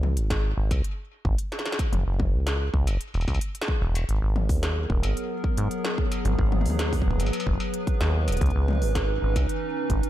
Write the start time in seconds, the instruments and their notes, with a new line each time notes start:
Already playing: acid bass C#2
0.03 high tom
0.17 acid bass G#1, closed hi-hat
0.30 kick, snare, closed hi-hat
0.57 acid bass G#1
0.71 acid bass C#2, kick, closed hi-hat, struck metal
0.84 closed hi-hat
1.25 acid bass G#1, kick
1.38 closed hi-hat
1.52 snare
1.59 snare
1.65 snare
1.72 snare
1.79 kick, closed hi-hat, struck metal
1.93 acid bass F#1, closed hi-hat, high tom
2.06 acid bass F#1
2.20 kick, high tom
2.33 acid bass C#2
2.47 snare, closed hi-hat
2.74 acid bass C#2, kick
2.87 acid bass F#1, closed hi-hat, struck metal
3.01 closed hi-hat
3.14 acid bass E1, struck metal
3.21 struck metal
3.28 acid bass C#2, kick, struck metal
3.34 struck metal
3.41 closed hi-hat
3.55 closed hi-hat
3.61 snare
3.68 kick
3.82 acid bass E1
3.95 closed hi-hat, struck metal
4.09 acid bass G#1, ambient pad F#3 B3 G#4 A#4, closed hi-hat
4.22 acid bass G#1
4.36 high tom
4.49 acid bass D#2, kick, open hi-hat
4.63 snare, closed hi-hat
4.90 acid bass D#1, kick
5.03 acid bass G#1, closed hi-hat, struck metal
5.17 closed hi-hat
5.44 kick
5.57 acid bass G#2, closed hi-hat
5.71 closed hi-hat
5.84 snare
5.98 kick
6.12 closed hi-hat, struck metal
6.25 acid bass G#1, ambient pad B4, closed hi-hat, high tom
6.39 acid bass G#1, kick
6.52 high tom
6.61 high tom
6.66 acid bass D#2, open hi-hat
6.70 high tom
6.79 snare, closed hi-hat
6.93 kick, open hi-hat
7.02 kick
7.06 acid bass D#1
7.11 kick
7.20 acid bass G#1, closed hi-hat, struck metal
7.26 struck metal
7.33 closed hi-hat, struck metal
7.40 struck metal
7.47 acid bass F#1, kick
7.60 struck metal
7.74 closed hi-hat
7.87 kick, closed hi-hat
8.01 acid bass D#2, snare
8.28 acid bass D#1, closed hi-hat, struck metal
8.32 closed hi-hat
8.37 closed hi-hat
8.41 acid bass C#2, ambient pad E3 C#4 D#4, kick, closed hi-hat
8.46 closed hi-hat
8.50 closed hi-hat
8.55 acid bass C#2
8.68 high tom
8.71 high tom
8.73 high tom
8.75 high tom
8.77 high tom
8.80 acid bass G#1, open hi-hat, high tom
8.95 kick, snare, closed hi-hat
9.22 acid bass G#1
9.36 acid bass C#2, kick, closed hi-hat, struck metal
9.49 closed hi-hat
9.90 acid bass G#1, kick, closed hi-hat
10.03 closed hi-hat